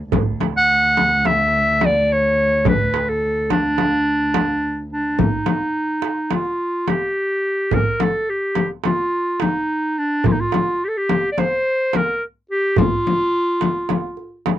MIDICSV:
0, 0, Header, 1, 5, 480
1, 0, Start_track
1, 0, Tempo, 562324
1, 108, Time_signature, 9, 3, 24, 8
1, 12452, End_track
2, 0, Start_track
2, 0, Title_t, "Clarinet"
2, 0, Program_c, 0, 71
2, 485, Note_on_c, 0, 78, 107
2, 1075, Note_on_c, 0, 76, 113
2, 1088, Note_off_c, 0, 78, 0
2, 1580, Note_on_c, 0, 74, 99
2, 1593, Note_off_c, 0, 76, 0
2, 1814, Note_on_c, 0, 73, 98
2, 1826, Note_off_c, 0, 74, 0
2, 2282, Note_off_c, 0, 73, 0
2, 2292, Note_on_c, 0, 71, 90
2, 2639, Note_on_c, 0, 69, 90
2, 2652, Note_off_c, 0, 71, 0
2, 2995, Note_off_c, 0, 69, 0
2, 3004, Note_on_c, 0, 62, 95
2, 4163, Note_off_c, 0, 62, 0
2, 4206, Note_on_c, 0, 62, 83
2, 4434, Note_on_c, 0, 63, 80
2, 4447, Note_off_c, 0, 62, 0
2, 5401, Note_on_c, 0, 65, 79
2, 5414, Note_off_c, 0, 63, 0
2, 5880, Note_on_c, 0, 67, 86
2, 5892, Note_off_c, 0, 65, 0
2, 6606, Note_on_c, 0, 70, 85
2, 6619, Note_off_c, 0, 67, 0
2, 6846, Note_on_c, 0, 69, 83
2, 6859, Note_off_c, 0, 70, 0
2, 7081, Note_on_c, 0, 67, 83
2, 7094, Note_off_c, 0, 69, 0
2, 7417, Note_off_c, 0, 67, 0
2, 7559, Note_on_c, 0, 65, 87
2, 8036, Note_on_c, 0, 63, 85
2, 8049, Note_off_c, 0, 65, 0
2, 8525, Note_on_c, 0, 62, 83
2, 8538, Note_off_c, 0, 63, 0
2, 8767, Note_on_c, 0, 65, 87
2, 8780, Note_off_c, 0, 62, 0
2, 8811, Note_on_c, 0, 63, 76
2, 8823, Note_off_c, 0, 65, 0
2, 8880, Note_on_c, 0, 65, 91
2, 8893, Note_off_c, 0, 63, 0
2, 9256, Note_on_c, 0, 67, 84
2, 9269, Note_off_c, 0, 65, 0
2, 9291, Note_on_c, 0, 69, 76
2, 9304, Note_off_c, 0, 67, 0
2, 9367, Note_on_c, 0, 67, 87
2, 9380, Note_off_c, 0, 69, 0
2, 9656, Note_off_c, 0, 67, 0
2, 9661, Note_on_c, 0, 74, 72
2, 9722, Note_on_c, 0, 72, 105
2, 9734, Note_off_c, 0, 74, 0
2, 10213, Note_on_c, 0, 70, 87
2, 10226, Note_off_c, 0, 72, 0
2, 10441, Note_off_c, 0, 70, 0
2, 10678, Note_on_c, 0, 67, 95
2, 10911, Note_on_c, 0, 65, 104
2, 10924, Note_off_c, 0, 67, 0
2, 12347, Note_off_c, 0, 65, 0
2, 12452, End_track
3, 0, Start_track
3, 0, Title_t, "Cello"
3, 0, Program_c, 1, 42
3, 0, Note_on_c, 1, 38, 64
3, 96, Note_off_c, 1, 38, 0
3, 101, Note_on_c, 1, 38, 70
3, 4475, Note_off_c, 1, 38, 0
3, 12452, End_track
4, 0, Start_track
4, 0, Title_t, "Darbuka"
4, 103, Note_on_c, 9, 64, 91
4, 189, Note_off_c, 9, 64, 0
4, 350, Note_on_c, 9, 63, 62
4, 435, Note_off_c, 9, 63, 0
4, 830, Note_on_c, 9, 63, 62
4, 916, Note_off_c, 9, 63, 0
4, 1071, Note_on_c, 9, 63, 59
4, 1156, Note_off_c, 9, 63, 0
4, 1195, Note_on_c, 9, 62, 28
4, 1281, Note_off_c, 9, 62, 0
4, 1548, Note_on_c, 9, 63, 63
4, 1633, Note_off_c, 9, 63, 0
4, 2263, Note_on_c, 9, 64, 85
4, 2348, Note_off_c, 9, 64, 0
4, 2508, Note_on_c, 9, 63, 68
4, 2593, Note_off_c, 9, 63, 0
4, 2991, Note_on_c, 9, 63, 68
4, 3076, Note_off_c, 9, 63, 0
4, 3227, Note_on_c, 9, 63, 65
4, 3313, Note_off_c, 9, 63, 0
4, 3707, Note_on_c, 9, 63, 76
4, 3792, Note_off_c, 9, 63, 0
4, 4427, Note_on_c, 9, 64, 69
4, 4512, Note_off_c, 9, 64, 0
4, 4661, Note_on_c, 9, 63, 62
4, 4747, Note_off_c, 9, 63, 0
4, 5140, Note_on_c, 9, 63, 59
4, 5225, Note_off_c, 9, 63, 0
4, 5383, Note_on_c, 9, 63, 58
4, 5468, Note_off_c, 9, 63, 0
4, 5505, Note_on_c, 9, 62, 23
4, 5590, Note_off_c, 9, 62, 0
4, 5870, Note_on_c, 9, 63, 62
4, 5955, Note_off_c, 9, 63, 0
4, 6585, Note_on_c, 9, 64, 87
4, 6670, Note_off_c, 9, 64, 0
4, 6829, Note_on_c, 9, 63, 62
4, 6914, Note_off_c, 9, 63, 0
4, 7301, Note_on_c, 9, 63, 59
4, 7387, Note_off_c, 9, 63, 0
4, 7542, Note_on_c, 9, 63, 62
4, 7628, Note_off_c, 9, 63, 0
4, 7659, Note_on_c, 9, 62, 23
4, 7744, Note_off_c, 9, 62, 0
4, 8021, Note_on_c, 9, 63, 65
4, 8107, Note_off_c, 9, 63, 0
4, 8742, Note_on_c, 9, 64, 89
4, 8827, Note_off_c, 9, 64, 0
4, 8982, Note_on_c, 9, 63, 67
4, 9067, Note_off_c, 9, 63, 0
4, 9470, Note_on_c, 9, 63, 59
4, 9555, Note_off_c, 9, 63, 0
4, 9714, Note_on_c, 9, 63, 61
4, 9800, Note_off_c, 9, 63, 0
4, 10186, Note_on_c, 9, 63, 62
4, 10272, Note_off_c, 9, 63, 0
4, 10896, Note_on_c, 9, 64, 80
4, 10981, Note_off_c, 9, 64, 0
4, 11617, Note_on_c, 9, 63, 56
4, 11702, Note_off_c, 9, 63, 0
4, 11856, Note_on_c, 9, 63, 56
4, 11941, Note_off_c, 9, 63, 0
4, 12096, Note_on_c, 9, 62, 24
4, 12181, Note_off_c, 9, 62, 0
4, 12341, Note_on_c, 9, 63, 65
4, 12427, Note_off_c, 9, 63, 0
4, 12452, End_track
5, 0, Start_track
5, 0, Title_t, "Frame drum"
5, 112, Note_on_c, 9, 64, 86
5, 197, Note_off_c, 9, 64, 0
5, 346, Note_on_c, 9, 64, 57
5, 431, Note_off_c, 9, 64, 0
5, 831, Note_on_c, 9, 64, 53
5, 917, Note_off_c, 9, 64, 0
5, 1067, Note_on_c, 9, 64, 57
5, 1152, Note_off_c, 9, 64, 0
5, 1547, Note_on_c, 9, 64, 58
5, 1633, Note_off_c, 9, 64, 0
5, 2271, Note_on_c, 9, 64, 87
5, 2356, Note_off_c, 9, 64, 0
5, 2994, Note_on_c, 9, 64, 62
5, 3079, Note_off_c, 9, 64, 0
5, 3230, Note_on_c, 9, 64, 59
5, 3315, Note_off_c, 9, 64, 0
5, 3707, Note_on_c, 9, 64, 64
5, 3792, Note_off_c, 9, 64, 0
5, 4428, Note_on_c, 9, 64, 78
5, 4513, Note_off_c, 9, 64, 0
5, 4663, Note_on_c, 9, 64, 64
5, 4748, Note_off_c, 9, 64, 0
5, 5383, Note_on_c, 9, 64, 55
5, 5469, Note_off_c, 9, 64, 0
5, 5868, Note_on_c, 9, 64, 61
5, 5954, Note_off_c, 9, 64, 0
5, 6594, Note_on_c, 9, 64, 73
5, 6679, Note_off_c, 9, 64, 0
5, 6831, Note_on_c, 9, 64, 62
5, 6916, Note_off_c, 9, 64, 0
5, 7308, Note_on_c, 9, 64, 60
5, 7393, Note_off_c, 9, 64, 0
5, 7556, Note_on_c, 9, 64, 58
5, 7641, Note_off_c, 9, 64, 0
5, 8042, Note_on_c, 9, 64, 59
5, 8127, Note_off_c, 9, 64, 0
5, 8754, Note_on_c, 9, 64, 70
5, 8840, Note_off_c, 9, 64, 0
5, 8998, Note_on_c, 9, 64, 66
5, 9084, Note_off_c, 9, 64, 0
5, 9471, Note_on_c, 9, 64, 66
5, 9556, Note_off_c, 9, 64, 0
5, 9711, Note_on_c, 9, 64, 63
5, 9796, Note_off_c, 9, 64, 0
5, 10196, Note_on_c, 9, 64, 63
5, 10282, Note_off_c, 9, 64, 0
5, 10910, Note_on_c, 9, 64, 92
5, 10995, Note_off_c, 9, 64, 0
5, 11156, Note_on_c, 9, 64, 67
5, 11242, Note_off_c, 9, 64, 0
5, 11626, Note_on_c, 9, 64, 59
5, 11712, Note_off_c, 9, 64, 0
5, 11865, Note_on_c, 9, 64, 61
5, 11950, Note_off_c, 9, 64, 0
5, 12349, Note_on_c, 9, 64, 58
5, 12434, Note_off_c, 9, 64, 0
5, 12452, End_track
0, 0, End_of_file